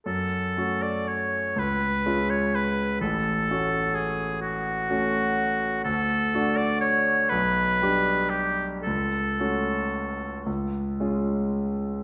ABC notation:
X:1
M:6/8
L:1/16
Q:3/8=41
K:F#m
V:1 name="Oboe"
A3 d c2 B3 c B2 | A4 G2 F6 | A3 d c2 B4 =G2 | A6 z6 |]
V:2 name="Grand piano"
F,,2 [A,CF]4 C,,2 [G,C^E]4 | A,,,2 [A,CF]6 [A,CF]4 | D,,2 [A,DF]4 B,,,2 [=G,D=G]4 | C,,2 [A,CF]4 C,,2 [G,C^E]4 |]